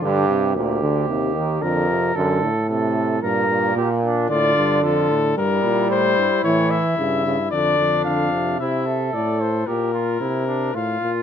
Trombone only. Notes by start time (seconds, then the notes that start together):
0.02 D3
0.28 C3
0.56 A#2
0.82 D3
1.08 C3
1.35 D#3
1.62 D3
1.89 C3
2.16 D3
2.69 C3
3.22 A#2
3.49 A#2
4.29 D3
5.37 G3
6.44 E3
6.98 C#3
7.25 C#3
7.52 D3
8.06 D3
8.32 C3